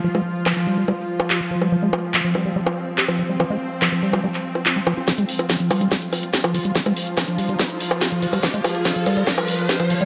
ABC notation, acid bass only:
X:1
M:4/4
L:1/16
Q:1/4=143
K:Ebmix
V:1 name="Acid bass" clef=bass
F, A, z2 F, F, G, G, G, z3 G F, F, G, | F, A, z2 F, F, G, G, G, z3 G F, F, G, | F, A, z2 F, F, G, G, G, z3 F G, F, F | F, A, z2 F, F, G, G, G, z3 G F, F, G, |
F, A, z2 F, F, G, G, G, z3 G F, F, G, | F, A, z2 F, F, G, G, G, z3 G F, F, G, |]